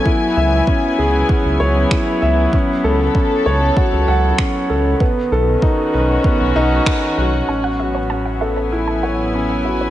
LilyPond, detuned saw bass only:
\new Staff \with { instrumentName = "Detuned saw bass" } { \clef bass \time 4/4 \key a \lydian \tempo 4 = 97 r8 cis,8 r8 cis,8 r16 cis,16 cis,8 r8 cis,8 | r8 cis,8 r8 cis,8 r16 cis,16 cis,8 r8 cis,8 | r8 b,,8 r8 b,,8 r16 b,,16 b,,8 r8 b,,8 | a,,1 | }